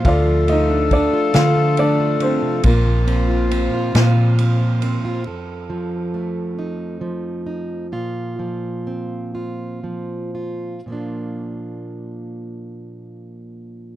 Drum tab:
RD |xxxxxx|xxxxxx|------|------|
SD |---o--|---o--|------|------|
BD |o-o---|o-----|------|------|

RD |------|
SD |------|
BD |------|